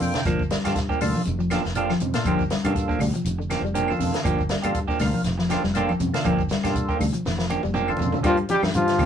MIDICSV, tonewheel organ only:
0, 0, Header, 1, 2, 480
1, 0, Start_track
1, 0, Key_signature, -2, "minor"
1, 0, Tempo, 499584
1, 244, Time_signature, 4, 2, 24, 8
1, 8700, End_track
2, 0, Start_track
2, 0, Title_t, "Tonewheel organ"
2, 0, Program_c, 0, 16
2, 0, Note_on_c, 0, 58, 82
2, 0, Note_on_c, 0, 62, 80
2, 0, Note_on_c, 0, 65, 77
2, 0, Note_on_c, 0, 69, 96
2, 20, Note_on_c, 0, 79, 68
2, 187, Note_off_c, 0, 58, 0
2, 190, Note_off_c, 0, 62, 0
2, 191, Note_off_c, 0, 65, 0
2, 195, Note_off_c, 0, 69, 0
2, 236, Note_off_c, 0, 79, 0
2, 623, Note_on_c, 0, 58, 73
2, 628, Note_on_c, 0, 62, 71
2, 630, Note_on_c, 0, 65, 68
2, 637, Note_on_c, 0, 69, 86
2, 760, Note_off_c, 0, 58, 0
2, 762, Note_off_c, 0, 62, 0
2, 763, Note_off_c, 0, 65, 0
2, 767, Note_off_c, 0, 69, 0
2, 968, Note_on_c, 0, 58, 87
2, 974, Note_on_c, 0, 62, 76
2, 974, Note_on_c, 0, 65, 85
2, 983, Note_on_c, 0, 69, 102
2, 1169, Note_off_c, 0, 58, 0
2, 1173, Note_off_c, 0, 62, 0
2, 1173, Note_off_c, 0, 65, 0
2, 1177, Note_off_c, 0, 69, 0
2, 1452, Note_on_c, 0, 58, 75
2, 1457, Note_on_c, 0, 62, 62
2, 1462, Note_on_c, 0, 65, 66
2, 1470, Note_on_c, 0, 69, 83
2, 1558, Note_off_c, 0, 58, 0
2, 1561, Note_off_c, 0, 62, 0
2, 1563, Note_off_c, 0, 65, 0
2, 1568, Note_off_c, 0, 69, 0
2, 1688, Note_on_c, 0, 58, 88
2, 1690, Note_on_c, 0, 62, 68
2, 1697, Note_on_c, 0, 65, 75
2, 1701, Note_on_c, 0, 69, 91
2, 1846, Note_off_c, 0, 58, 0
2, 1847, Note_off_c, 0, 62, 0
2, 1850, Note_off_c, 0, 65, 0
2, 1852, Note_off_c, 0, 69, 0
2, 2055, Note_on_c, 0, 58, 80
2, 2061, Note_on_c, 0, 62, 71
2, 2066, Note_on_c, 0, 69, 92
2, 2067, Note_on_c, 0, 65, 72
2, 2251, Note_off_c, 0, 58, 0
2, 2255, Note_off_c, 0, 62, 0
2, 2257, Note_off_c, 0, 65, 0
2, 2257, Note_off_c, 0, 69, 0
2, 2537, Note_on_c, 0, 58, 71
2, 2545, Note_on_c, 0, 62, 72
2, 2546, Note_on_c, 0, 65, 73
2, 2554, Note_on_c, 0, 69, 78
2, 2927, Note_off_c, 0, 58, 0
2, 2931, Note_off_c, 0, 62, 0
2, 2932, Note_off_c, 0, 65, 0
2, 2936, Note_off_c, 0, 69, 0
2, 3737, Note_on_c, 0, 58, 82
2, 3744, Note_on_c, 0, 62, 76
2, 3747, Note_on_c, 0, 65, 76
2, 3749, Note_on_c, 0, 69, 94
2, 4031, Note_off_c, 0, 58, 0
2, 4035, Note_off_c, 0, 62, 0
2, 4036, Note_off_c, 0, 65, 0
2, 4037, Note_off_c, 0, 69, 0
2, 4462, Note_on_c, 0, 58, 80
2, 4465, Note_on_c, 0, 62, 73
2, 4472, Note_on_c, 0, 65, 74
2, 4475, Note_on_c, 0, 69, 89
2, 4601, Note_off_c, 0, 58, 0
2, 4603, Note_off_c, 0, 62, 0
2, 4607, Note_off_c, 0, 65, 0
2, 4608, Note_off_c, 0, 69, 0
2, 4800, Note_on_c, 0, 58, 88
2, 4804, Note_on_c, 0, 62, 84
2, 4816, Note_on_c, 0, 65, 85
2, 4819, Note_on_c, 0, 70, 93
2, 5007, Note_off_c, 0, 58, 0
2, 5009, Note_off_c, 0, 62, 0
2, 5015, Note_off_c, 0, 65, 0
2, 5017, Note_off_c, 0, 70, 0
2, 5292, Note_on_c, 0, 58, 75
2, 5296, Note_on_c, 0, 62, 63
2, 5298, Note_on_c, 0, 65, 74
2, 5305, Note_on_c, 0, 69, 80
2, 5400, Note_off_c, 0, 58, 0
2, 5402, Note_off_c, 0, 62, 0
2, 5403, Note_off_c, 0, 65, 0
2, 5407, Note_off_c, 0, 69, 0
2, 5515, Note_on_c, 0, 58, 80
2, 5523, Note_on_c, 0, 62, 77
2, 5526, Note_on_c, 0, 65, 72
2, 5531, Note_on_c, 0, 69, 94
2, 5680, Note_off_c, 0, 58, 0
2, 5684, Note_off_c, 0, 62, 0
2, 5686, Note_off_c, 0, 65, 0
2, 5688, Note_off_c, 0, 69, 0
2, 5896, Note_on_c, 0, 62, 74
2, 5898, Note_on_c, 0, 58, 79
2, 5902, Note_on_c, 0, 65, 67
2, 5906, Note_on_c, 0, 69, 87
2, 6093, Note_off_c, 0, 62, 0
2, 6094, Note_off_c, 0, 58, 0
2, 6096, Note_off_c, 0, 65, 0
2, 6098, Note_off_c, 0, 69, 0
2, 6376, Note_on_c, 0, 58, 80
2, 6382, Note_on_c, 0, 62, 67
2, 6384, Note_on_c, 0, 65, 76
2, 6388, Note_on_c, 0, 69, 84
2, 6766, Note_off_c, 0, 58, 0
2, 6769, Note_off_c, 0, 62, 0
2, 6770, Note_off_c, 0, 65, 0
2, 6772, Note_off_c, 0, 69, 0
2, 7568, Note_on_c, 0, 58, 79
2, 7575, Note_on_c, 0, 62, 75
2, 7582, Note_on_c, 0, 69, 100
2, 7583, Note_on_c, 0, 65, 74
2, 7864, Note_off_c, 0, 58, 0
2, 7868, Note_off_c, 0, 62, 0
2, 7871, Note_off_c, 0, 65, 0
2, 7871, Note_off_c, 0, 69, 0
2, 8700, End_track
0, 0, End_of_file